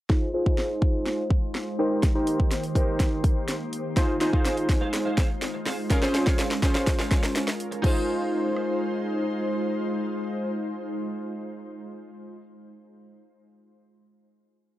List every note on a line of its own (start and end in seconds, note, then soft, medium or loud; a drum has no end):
0.09 1.77 G#3 medium
0.09 0.29 D#4 medium
0.09 3.93 D#4 medium
0.09 0.29 F4 medium
0.09 1.77 F4 medium
0.09 0.29 G#4 medium
0.09 1.77 C5 medium
0.09 0.29 C5 medium
0.09 kick loud
0.09 snare soft
0.34 0.43 D#4 medium
0.34 0.44 F4 medium
0.34 0.44 G#4 medium
0.34 0.44 C5 medium
0.46 1.23 D#4 medium
0.46 1.24 G#4 medium
0.46 kick medium
0.58 snare medium
0.82 kick medium
1.06 snare medium
1.30 kick loud
1.55 snare medium
1.79 3.95 D#3 medium
1.79 3.95 A#3 medium
1.79 2.08 D#4 medium
1.79 3.95 G4 medium
1.79 2.08 G4 medium
1.79 2.08 A#4 medium
1.79 3.95 C5 medium
1.79 2.08 C5 loud
2.03 kick loud
2.03 snare medium
2.03 closed hi-hat medium
2.15 2.64 D#4 medium
2.15 2.64 G4 medium
2.15 2.64 A#4 medium
2.15 2.64 C5 loud
2.27 closed hi-hat medium
2.40 kick medium
2.51 snare medium
2.51 closed hi-hat medium
2.64 closed hi-hat medium
2.75 3.53 D#4 medium
2.75 3.53 G4 medium
2.75 3.53 A#4 medium
2.75 3.53 C5 medium
2.75 kick medium
2.75 closed hi-hat medium
3.00 kick medium
3.00 snare medium
3.00 closed hi-hat loud
3.24 kick loud
3.24 closed hi-hat medium
3.48 snare medium
3.48 closed hi-hat medium
3.73 closed hi-hat medium
3.96 7.80 G#3 medium
3.96 4.11 D#4 medium
3.96 4.16 D#4 medium
3.96 5.89 D#4 medium
3.96 4.16 F4 medium
3.96 5.89 F4 medium
3.96 4.16 G#4 medium
3.96 4.08 G#4 medium
3.96 4.16 C5 medium
3.96 5.89 C5 medium
3.96 4.08 C5 medium
3.96 4.07 F5 medium
3.96 kick loud
3.96 snare medium
3.96 closed hi-hat medium
4.09 muted clean electric guitar stroke soft
4.21 4.31 D#4 medium
4.21 4.31 F4 medium
4.21 4.31 G#4 medium
4.21 4.31 C5 medium
4.21 muted clean electric guitar stroke soft
4.21 snare medium
4.21 closed hi-hat medium
4.33 5.10 D#4 medium
4.33 4.43 D#4 medium
4.33 5.11 F4 medium
4.33 5.11 G#4 medium
4.33 4.44 G#4 medium
4.33 4.45 C5 medium
4.33 5.11 C5 loud
4.33 4.45 F5 medium
4.33 kick medium
4.45 4.60 D#4 medium
4.45 4.57 G#4 medium
4.45 4.56 C5 loud
4.45 4.56 F5 loud
4.45 snare medium
4.45 closed hi-hat loud
4.57 muted clean electric guitar stroke medium
4.57 closed hi-hat medium
4.69 muted clean electric guitar stroke soft
4.69 kick medium
4.69 snare medium
4.69 closed hi-hat medium
4.81 4.92 D#4 medium
4.81 4.92 G#4 medium
4.81 4.93 C5 medium
4.81 4.93 F5 medium
4.93 muted clean electric guitar stroke soft
4.93 snare medium
4.93 closed hi-hat loud
5.05 5.16 D#4 medium
5.05 5.17 G#4 medium
5.05 5.17 C5 medium
5.05 5.18 F5 medium
5.17 5.29 D#4 medium
5.17 5.29 G#4 medium
5.17 5.29 C5 medium
5.17 5.28 F5 medium
5.17 kick loud
5.17 snare loud
5.17 closed hi-hat medium
5.30 muted clean electric guitar stroke soft
5.42 snare medium
5.42 closed hi-hat medium
5.54 muted clean electric guitar stroke soft
5.66 5.81 D#4 medium
5.66 5.78 G#4 medium
5.66 5.77 C5 medium
5.66 5.77 F5 medium
5.66 snare medium
5.66 open hi-hat medium
5.78 muted clean electric guitar stroke soft
5.90 6.00 C#4 medium
5.90 7.82 C#4 medium
5.90 6.05 F4 medium
5.90 6.00 F4 medium
5.90 7.82 F4 medium
5.90 6.00 G#4 medium
5.90 6.02 G#4 loud
5.90 7.82 A#4 medium
5.90 6.00 A#4 loud
5.90 6.02 C#5 loud
5.90 6.01 F5 loud
5.90 kick loud
5.90 snare loud
5.90 closed hi-hat loud
6.02 6.51 C#4 medium
6.02 6.51 F4 medium
6.02 6.51 G#4 medium
6.02 6.51 C5 loud
6.02 muted clean electric guitar stroke medium
6.02 snare loud
6.14 muted clean electric guitar stroke soft
6.14 snare loud
6.14 closed hi-hat medium
6.26 6.37 F4 medium
6.26 6.38 G#4 medium
6.26 6.38 C#5 medium
6.26 6.38 F5 medium
6.26 kick medium
6.26 snare loud
6.38 6.53 F4 medium
6.38 6.50 G#4 loud
6.38 6.50 C#5 medium
6.38 6.49 F5 loud
6.38 snare loud
6.38 closed hi-hat loud
6.51 muted clean electric guitar stroke soft
6.51 snare loud
6.51 closed hi-hat medium
6.63 7.40 C#4 medium
6.63 7.41 F4 medium
6.63 7.41 G#4 medium
6.63 7.41 C5 loud
6.63 muted clean electric guitar stroke soft
6.63 kick medium
6.63 snare loud
6.63 closed hi-hat medium
6.75 6.86 F4 medium
6.75 6.86 G#4 medium
6.75 6.86 C#5 medium
6.75 6.87 F5 medium
6.75 snare loud
6.87 muted clean electric guitar stroke soft
6.87 kick medium
6.87 snare loud
6.87 closed hi-hat loud
6.99 7.10 F4 medium
6.99 7.10 G#4 medium
6.99 7.11 C#5 medium
6.99 7.11 F5 medium
6.99 snare loud
7.11 7.23 F4 medium
7.11 7.23 G#4 medium
7.11 7.22 C#5 medium
7.11 7.22 F5 medium
7.11 kick loud
7.11 snare loud
7.11 closed hi-hat medium
7.23 muted clean electric guitar stroke soft
7.23 snare loud
7.35 muted clean electric guitar stroke soft
7.35 snare loud
7.35 closed hi-hat medium
7.47 muted clean electric guitar stroke soft
7.47 snare loud
7.60 closed hi-hat medium
7.71 muted clean electric guitar stroke medium
7.71 closed hi-hat medium
7.82 12.38 G#3 medium
7.82 12.36 D#4 medium
7.82 12.41 D#4 loud
7.82 12.38 D#4 medium
7.82 12.38 F4 medium
7.82 12.43 G#4 medium
7.82 12.39 G#4 medium
7.82 12.38 C5 medium
7.82 12.44 C5 medium
7.82 12.40 C5 loud
7.82 kick loud
7.82 crash medium
7.87 12.46 F5 medium
8.56 cross-stick medium